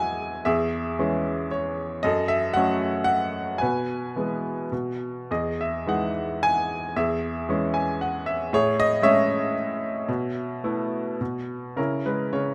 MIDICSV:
0, 0, Header, 1, 2, 480
1, 0, Start_track
1, 0, Key_signature, 4, "major"
1, 0, Tempo, 528169
1, 422, Time_signature, 3, 2, 24, 8
1, 3773, Tempo, 569801
1, 5213, Tempo, 545455
1, 6173, Tempo, 521286
1, 9053, Tempo, 561798
1, 11159, End_track
2, 0, Start_track
2, 0, Title_t, "Upright piano"
2, 0, Program_c, 0, 0
2, 0, Control_c, 0, 64, 127
2, 0, Note_on_c, 0, 40, 46
2, 0, Note_on_c, 0, 54, 39
2, 0, Note_on_c, 0, 56, 35
2, 0, Note_on_c, 0, 64, 40
2, 0, Note_on_c, 0, 68, 40
2, 0, Note_on_c, 0, 75, 55
2, 0, Note_on_c, 0, 76, 60
2, 0, Note_on_c, 0, 78, 62
2, 0, Note_on_c, 0, 80, 84
2, 370, Note_off_c, 0, 80, 0
2, 386, Note_off_c, 0, 40, 0
2, 410, Note_off_c, 0, 76, 0
2, 410, Note_on_c, 0, 76, 73
2, 416, Note_on_c, 0, 40, 52
2, 423, Note_off_c, 0, 68, 0
2, 423, Note_on_c, 0, 68, 52
2, 432, Control_c, 0, 64, 0
2, 435, Note_off_c, 0, 54, 0
2, 435, Note_off_c, 0, 75, 0
2, 436, Note_off_c, 0, 56, 0
2, 440, Note_off_c, 0, 64, 0
2, 441, Note_off_c, 0, 78, 0
2, 581, Control_c, 0, 64, 127
2, 900, Note_on_c, 0, 52, 44
2, 900, Note_on_c, 0, 56, 38
2, 906, Note_on_c, 0, 61, 45
2, 1335, Note_off_c, 0, 76, 0
2, 1342, Note_off_c, 0, 68, 0
2, 1362, Note_off_c, 0, 52, 0
2, 1362, Note_off_c, 0, 56, 0
2, 1365, Note_off_c, 0, 61, 0
2, 1376, Note_on_c, 0, 73, 58
2, 1818, Note_off_c, 0, 40, 0
2, 1823, Note_off_c, 0, 73, 0
2, 1843, Note_on_c, 0, 75, 82
2, 1856, Note_on_c, 0, 42, 64
2, 1863, Note_on_c, 0, 69, 57
2, 1869, Control_c, 0, 64, 0
2, 2012, Control_c, 0, 64, 127
2, 2074, Note_on_c, 0, 76, 82
2, 2099, Note_off_c, 0, 75, 0
2, 2304, Note_on_c, 0, 78, 89
2, 2306, Note_off_c, 0, 76, 0
2, 2330, Note_on_c, 0, 54, 49
2, 2332, Note_on_c, 0, 57, 47
2, 2337, Note_on_c, 0, 61, 51
2, 2537, Note_off_c, 0, 69, 0
2, 2753, Note_off_c, 0, 78, 0
2, 2767, Note_on_c, 0, 78, 91
2, 2791, Note_off_c, 0, 54, 0
2, 2792, Note_off_c, 0, 57, 0
2, 2794, Note_off_c, 0, 61, 0
2, 3248, Note_off_c, 0, 42, 0
2, 3257, Note_on_c, 0, 80, 66
2, 3280, Note_off_c, 0, 78, 0
2, 3285, Note_on_c, 0, 71, 54
2, 3294, Note_on_c, 0, 47, 48
2, 3296, Control_c, 0, 64, 0
2, 3475, Control_c, 0, 64, 127
2, 3781, Note_on_c, 0, 52, 34
2, 3788, Note_on_c, 0, 56, 32
2, 3791, Note_on_c, 0, 59, 41
2, 4202, Note_off_c, 0, 80, 0
2, 4215, Note_off_c, 0, 71, 0
2, 4225, Note_off_c, 0, 47, 0
2, 4238, Note_off_c, 0, 52, 0
2, 4242, Note_off_c, 0, 56, 0
2, 4243, Note_off_c, 0, 59, 0
2, 4251, Note_on_c, 0, 47, 44
2, 4261, Control_c, 0, 64, 0
2, 4396, Control_c, 0, 64, 127
2, 4722, Note_off_c, 0, 47, 0
2, 4746, Control_c, 0, 64, 0
2, 4747, Note_on_c, 0, 40, 44
2, 4749, Note_on_c, 0, 68, 38
2, 4755, Note_on_c, 0, 75, 57
2, 4895, Control_c, 0, 64, 127
2, 4992, Note_off_c, 0, 75, 0
2, 4999, Note_on_c, 0, 76, 59
2, 5217, Note_on_c, 0, 52, 40
2, 5225, Note_on_c, 0, 56, 37
2, 5225, Note_on_c, 0, 63, 37
2, 5234, Note_off_c, 0, 76, 0
2, 5235, Note_on_c, 0, 78, 65
2, 5432, Note_off_c, 0, 68, 0
2, 5686, Note_off_c, 0, 52, 0
2, 5690, Note_off_c, 0, 56, 0
2, 5690, Note_off_c, 0, 63, 0
2, 5713, Note_on_c, 0, 80, 92
2, 5723, Note_off_c, 0, 78, 0
2, 6146, Note_off_c, 0, 40, 0
2, 6183, Note_on_c, 0, 40, 54
2, 6185, Note_on_c, 0, 76, 68
2, 6186, Control_c, 0, 64, 0
2, 6197, Note_off_c, 0, 80, 0
2, 6199, Note_on_c, 0, 68, 46
2, 6333, Control_c, 0, 64, 127
2, 6666, Note_on_c, 0, 56, 45
2, 6667, Note_on_c, 0, 52, 42
2, 6677, Note_on_c, 0, 61, 50
2, 6897, Note_on_c, 0, 80, 58
2, 7112, Note_off_c, 0, 76, 0
2, 7119, Note_off_c, 0, 68, 0
2, 7123, Note_off_c, 0, 80, 0
2, 7129, Note_off_c, 0, 56, 0
2, 7130, Note_off_c, 0, 52, 0
2, 7135, Note_off_c, 0, 61, 0
2, 7150, Note_on_c, 0, 78, 57
2, 7367, Note_off_c, 0, 78, 0
2, 7380, Note_on_c, 0, 76, 66
2, 7582, Note_off_c, 0, 40, 0
2, 7598, Note_off_c, 0, 76, 0
2, 7624, Note_on_c, 0, 45, 59
2, 7625, Control_c, 0, 64, 0
2, 7628, Note_on_c, 0, 68, 62
2, 7636, Note_on_c, 0, 73, 88
2, 7767, Control_c, 0, 64, 127
2, 7866, Note_off_c, 0, 73, 0
2, 7871, Note_on_c, 0, 75, 100
2, 8080, Note_on_c, 0, 56, 53
2, 8086, Note_on_c, 0, 57, 43
2, 8089, Note_on_c, 0, 61, 56
2, 8090, Note_on_c, 0, 76, 86
2, 8097, Note_on_c, 0, 73, 61
2, 8102, Note_off_c, 0, 75, 0
2, 8293, Note_off_c, 0, 68, 0
2, 8547, Note_off_c, 0, 56, 0
2, 8551, Note_off_c, 0, 57, 0
2, 8552, Note_off_c, 0, 61, 0
2, 9024, Note_off_c, 0, 45, 0
2, 9057, Note_on_c, 0, 47, 57
2, 9066, Control_c, 0, 64, 0
2, 9219, Control_c, 0, 64, 127
2, 9529, Note_on_c, 0, 57, 43
2, 9532, Note_on_c, 0, 59, 39
2, 9534, Note_on_c, 0, 64, 46
2, 9981, Note_off_c, 0, 76, 0
2, 9984, Note_off_c, 0, 73, 0
2, 9985, Note_off_c, 0, 47, 0
2, 10002, Note_off_c, 0, 57, 0
2, 10003, Note_off_c, 0, 59, 0
2, 10004, Note_off_c, 0, 64, 0
2, 10016, Note_on_c, 0, 47, 45
2, 10025, Control_c, 0, 64, 0
2, 10150, Control_c, 0, 64, 127
2, 10493, Note_off_c, 0, 47, 0
2, 10493, Note_on_c, 0, 49, 37
2, 10496, Note_on_c, 0, 70, 54
2, 10509, Note_on_c, 0, 61, 40
2, 10510, Note_on_c, 0, 64, 36
2, 10517, Control_c, 0, 64, 0
2, 10670, Control_c, 0, 64, 127
2, 10722, Note_off_c, 0, 70, 0
2, 10743, Note_on_c, 0, 71, 53
2, 10744, Note_on_c, 0, 56, 36
2, 10964, Note_off_c, 0, 49, 0
2, 10974, Note_on_c, 0, 73, 56
2, 10976, Note_on_c, 0, 49, 39
2, 10987, Note_off_c, 0, 71, 0
2, 11159, Note_off_c, 0, 49, 0
2, 11159, Note_off_c, 0, 56, 0
2, 11159, Note_off_c, 0, 61, 0
2, 11159, Note_off_c, 0, 64, 0
2, 11159, Note_off_c, 0, 73, 0
2, 11159, End_track
0, 0, End_of_file